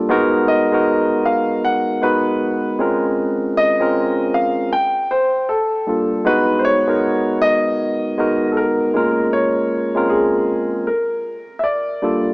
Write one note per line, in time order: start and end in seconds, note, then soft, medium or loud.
0.00 0.13 G3 medium
0.00 0.12 A#3 medium
0.00 0.13 D4 medium
0.00 0.13 F4 medium
0.00 0.12 A4 medium
0.09 0.59 G#3 loud
0.09 0.60 B3 medium
0.09 0.60 D#4 medium
0.09 0.60 F#4 medium
0.09 0.60 A#4 loud
0.48 1.28 D#5 medium
0.72 1.82 G#3 medium
0.72 1.83 B3 medium
0.72 1.83 D#4 medium
0.72 1.83 F#4 medium
0.72 1.83 A#4 medium
1.26 1.61 F5 medium
1.65 2.04 F#5 medium
2.02 2.77 G#3 medium
2.02 2.79 B3 medium
2.02 2.80 D#4 medium
2.02 2.80 F#4 medium
2.02 2.76 B4 medium
2.02 2.80 B4 medium
2.79 3.59 G#3 medium
2.79 3.59 C4 medium
2.79 3.59 C#4 medium
2.79 3.60 F4 medium
2.79 3.60 A#4 medium
3.57 4.36 D#5 loud
3.80 4.72 G#3 medium
3.80 4.72 C4 medium
3.80 4.72 C#4 medium
3.80 4.72 F4 medium
3.80 4.73 A#4 medium
4.34 4.73 F5 medium
4.73 5.12 G5 medium
5.11 5.46 C5 medium
5.49 6.22 A4 medium
5.87 6.20 G3 medium
5.87 6.21 A#3 medium
5.87 6.21 D4 medium
5.87 6.21 F4 medium
5.87 6.22 A4 medium
6.25 6.75 G#3 medium
6.25 6.75 B3 medium
6.25 6.76 D#4 medium
6.25 6.76 F#4 medium
6.25 6.60 B4 medium
6.25 6.76 B4 medium
6.59 6.64 C5 medium
6.65 7.37 C#5 loud
6.87 7.97 G#3 medium
6.87 7.98 B3 medium
6.87 7.98 D#4 medium
6.87 7.98 F#4 medium
6.87 7.98 A#4 medium
7.42 8.47 D#5 loud
8.18 8.93 G#3 medium
8.18 8.95 B3 medium
8.18 8.96 D#4 medium
8.18 8.96 F#4 medium
8.18 8.95 A#4 medium
8.52 8.57 A4 medium
8.57 9.36 A#4 medium
8.94 9.74 G#3 medium
8.94 9.75 A#3 medium
8.94 9.75 C#4 medium
8.94 9.75 F4 medium
8.94 9.76 A#4 medium
9.33 10.12 C#5 medium
9.95 10.87 G#3 medium
9.95 10.87 C4 medium
9.95 10.87 C#4 medium
9.95 10.88 F4 medium
9.95 10.88 A#4 medium
10.10 10.83 G#4 medium
10.87 11.99 A#4 medium
11.59 11.64 E5 medium
11.64 12.34 D5 medium
12.02 12.34 G3 medium
12.02 12.34 A#3 medium
12.02 12.34 D4 medium
12.02 12.34 F4 medium
12.02 12.34 A4 medium